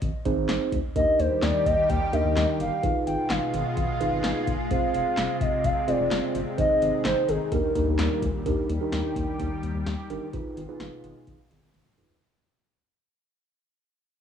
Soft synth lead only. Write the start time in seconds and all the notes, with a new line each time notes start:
0.96 D#5
1.19 C5
1.43 D5
1.66 D#5
1.90 G5
2.13 D#5
2.36 D#5
2.60 F5
3.07 G5
3.30 F5
3.77 F5
4.71 F5
5.41 D#5
5.65 F5
5.88 D5
6.58 D#5
7.05 C5
7.29 G#4
7.52 A#4